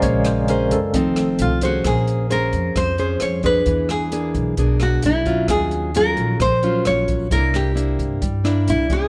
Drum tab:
HH |xxxxxxxx|xxxxxxxx|xxxxxxxx|xxxxxxxx|
SD |-r---r--|r---r-r-|-r---r--|r---r-r-|
BD |o--oo--o|o---o--o|o--oo--o|o---o--o|

HH |xxxxxxxx|
SD |-r---r--|
BD |o--oo--o|